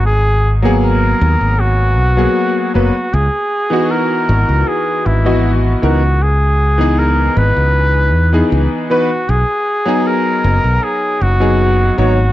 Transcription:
X:1
M:4/4
L:1/16
Q:1/4=78
K:C#dor
V:1 name="Flugelhorn"
G2 z2 A4 F6 F2 | G4 A4 G2 E2 z2 F2 | G4 A2 B6 z2 F2 | G4 A4 G2 F4 F2 |]
V:2 name="Electric grand piano"
z3 [F,A,B,G]8 [F,A,B,G]3 [F,A,B,B] z | z3 [E,B,DF]8 [E,B,Fd]3 [E,B,DA] z | z3 [E,B,DG]8 [E,B,DG]3 [E,B,DB] z | z3 [F,B,DG]8 [F,B,DG]3 [F,B,Dc] z |]
V:3 name="Fingered electric bass" clef=bass
G,,,6 D,, G,,,3 B,,, z3 F,,, z | C,, z4 z G,,, C,, z2 G,,,4 C,,2- | C,,6 G,,, C,,3 E,, z C,, z3 | B,,, z4 z F,,, B,,, z2 F,,,4 G,,,2 |]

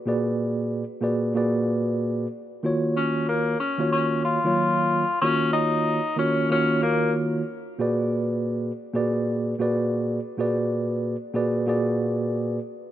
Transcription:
X:1
M:4/4
L:1/16
Q:"Swing 16ths" 1/4=93
K:Ebm
V:1 name="Tine electric piano"
[B,,B,GAc=d]4- [B,,B,GAcd] z [B,,B,GAcd]2 [B,,B,GAcd]6 z2 | [E,B,FGd]6 z [E,B,FGd]4 [E,G,B,Fd]4 z | [E,B,FGd]4- [E,B,FGd] z [E,B,FGd]2 [E,B,FGd]6 z2 | [B,,B,GAc=d]6 z [B,,B,GAcd]4 [B,,B,GAcd]4 z |
[B,,B,GAc=d]4- [B,,B,GAcd] z [B,,B,GAcd]2 [B,,B,GAcd]6 z2 |]
V:2 name="Tenor saxophone"
z16 | z2 D2 B,2 D2 D2 F6 | D2 E4 D2 D2 B,2 z4 | z16 |
z16 |]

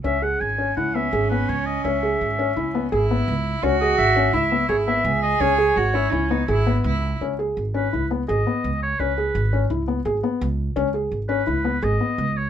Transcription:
X:1
M:5/4
L:1/8
Q:1/4=168
K:C#m
V:1 name="Oboe"
e f g2 f e2 B c d | e6 z4 | z d e2 e2 c e2 d | c8 z2 |
z3 B2 z d3 c | B4 z6 | z3 B3 d3 c |]
V:2 name="Cello"
C8- C2- | C6 E4 | F4 E4 G2- | G2 F E C D E2 E2 |
z8 z2 | z8 z2 | z8 z2 |]
V:3 name="Felt piano"
C G2 C E B, G B,2 z | C G2 C E B, G B,2 z | C G2 C E B, G B,2 z | C G2 C E B, G B,2 z |
C G2 C E B, G B,2 z | C G2 C E B, G B,2 z | C G2 C E B, G B,2 z |]
V:4 name="Upright bass" clef=bass
C,,2 G,,,2 C,,2 G,,,2 C,,2 | C,,2 G,,,2 C,,2 G,,,2 C,,2 | C,,2 G,,,2 C,,2 G,,,2 C,,2 | C,,2 G,,,2 C,,2 G,,,2 C,,2 |
C,,2 G,,,2 C,,2 G,,, z C,,2 | C,,2 G,,,2 C,,2 G,,, z C,,2 | C,,2 G,,,2 C,,2 G,,, z C,,2 |]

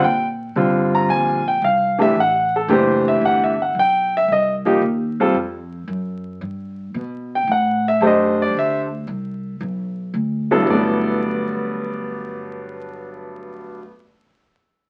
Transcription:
X:1
M:4/4
L:1/8
Q:"Swing" 1/4=113
K:G
V:1 name="Grand piano"
g z2 _b _a g =f e | f A c e (3f e f g e | _e z6 z | z3 g f e _e d |
e z6 z | d8- | d8 |]
V:2 name="Grand piano"
z2 [D,G,C=F]3 z2 [E,A,DG] | z2 [E,A,DG]3 z3 | z [=F,_B,_EG] z [G,C=FA] z4 | z6 [A,DGc]2- |
[A,DGc] z6 [G,,F,B,EA] | [G,,F,A,B,]8- | [G,,F,A,B,]8 |]
V:3 name="Upright bass" clef=bass
_B,,2 G,,2 _B,,,2 C,,2 | A,,,2 F,,,2 G,,,2 B,,,2 | C,,2 _E,,2 =F,,2 ^F,,2 | G,,2 B,,2 A,,2 F,,2 |
D,,2 C,,2 B,,,2 D,,2 | G,,,8- | G,,,8 |]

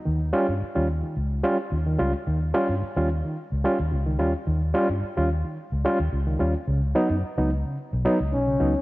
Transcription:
X:1
M:4/4
L:1/16
Q:1/4=109
K:Ebmix
V:1 name="Reed electric piano"
E, z [G,DF] [DF] z [G,DF] z E, z2 [G,DF] z [DF] E, [G,DF] z | E, z [G,DF] [DF] z [G,DF] z E, z2 [G,DF] z [DF] E, [G,DF] z | E, z [G,DF] [DF] z [G,DF] z E, z2 [G,DF] z [DF] E, [G,DF] z | D, z [_G,_CE] [CE] z [G,CE] z D, z2 [G,CE] z [CE] D, [G,CE] z |]
V:2 name="Trombone"
z16 | z16 | z16 | z12 D4 |]
V:3 name="Fingered electric bass" clef=bass
E,,2 z G,, z E,,2 z D,,2 z2 E,,2 D,, z | E,,2 z G,, z E,,2 z2 D,, z E,, D,,2 E,, z | E,,2 z G,, z E,,2 z2 D,, z E,, D,,2 E,, z | D,,2 z _G,, z D,,2 z2 _C,, z D,, C,,2 D,, z |]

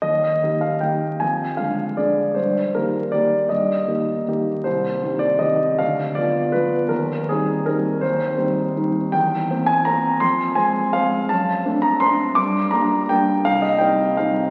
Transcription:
X:1
M:3/4
L:1/8
Q:1/4=162
K:Cm
V:1 name="Grand piano"
e3 f g2 | a2 f2 d2 | c2 B2 d2 | e4- e z |
c3 d e2 | f2 d2 =B2 | B2 A2 B2 | c4- c z |
g3 a b2 | c'2 a2 f2 | =a3 b c'2 | d'2 b2 g2 |
f e g2 f2 |]
V:2 name="Grand piano"
E,,2 [E,B,G]2 [E,B,G]2 | F,,2 [D,A,A]2 [D,A,A]2 | G,,2 [E,B,G]2 [E,B,G]2 | G,,2 [E,B,G]2 [E,B,G]2 |
C,,2 [E,CG]2 [E,CG]2 | D,,2 [F,=B,F]2 [F,B,F]2 | E,,2 [G,CE]2 [G,CE]2 | E,,2 [G,CE]2 [G,CE]2 |
=E,,2 [B,C]2 [B,C]2 | F,,2 [A,C]2 [A,C]2 | ^F,,2 [=A,CD]2 [A,CD]2 | G,,2 [G,B,D]2 [G,B,D]2 |
C,,2 [G,CE]2 [G,CE]2 |]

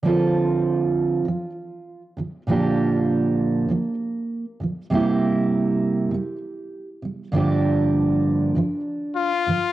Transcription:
X:1
M:4/4
L:1/8
Q:1/4=99
K:Dm
V:1 name="Trumpet"
z8 | z8 | z8 | z6 F2 |]
V:2 name="Steel-string acoustic guitar" clef=bass
[D,F,CFA]4 [D,F,] z2 [B,,D,F,] | [B,,D,F,B,DG]4 [B,,D,F,] z2 [B,,D,F,] | [C,G,B,EG]4 [C,G,] z2 [C,G,] | [G,,D,F,B,DG]4 [G,,D,F,] z2 [G,,D,F,] |]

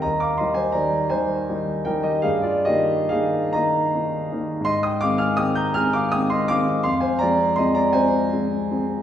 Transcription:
X:1
M:12/8
L:1/16
Q:3/8=54
K:Eb
V:1 name="Grand piano"
[eb] [fd'] [ec'] [ca] [db]2 [ca]4 [Bg] [Ge] [Af] [Fd] [Ge]2 [Af]2 [eb]6 | [ec'] [ge'] [fd'] [af'] [ge'] [bg'] [af'] [fd'] [ge'] [ec'] [fd']2 [fc'] [ca] [db]2 [ec'] [db] [ca]2 z4 |]
V:2 name="Grand piano" clef=bass
E,,2 [E,G,E]2 [E,G,E]2 [E,G,E]2 [E,G,E]2 [E,G,E]2 G,,2 [E,B,E]2 [E,B,E]2 [E,B,E]2 [E,B,E]2 [E,B,E]2 | A,,2 [E,A,C]2 [E,A,C]2 [E,A,C]2 [E,A,C]2 [E,A,C]2 F,,2 [F,A,C]2 [F,A,C]2 [F,A,C]2 [F,A,C]2 [F,A,C]2 |]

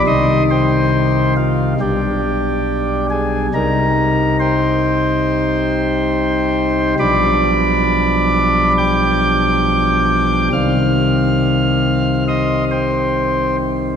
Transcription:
X:1
M:4/4
L:1/8
Q:1/4=69
K:Cm
V:1 name="Pipe organ"
[ec'e'] [cgc']2 [Ff] [Gdg]3 [Aa] | [Bb]2 [cgc']6 | [d=bd']4 [gd'g']4 | [ff']4 [ec'e'] [cgc']2 z |]
V:2 name="Pipe organ" clef=bass
[C,,C,E,G,E]4 [=B,,,=B,,G,D]4 | [C,,C,G,E]8 | [=B,,,=B,,F,G,D]8 | [C,,C,E,G,C]8 |]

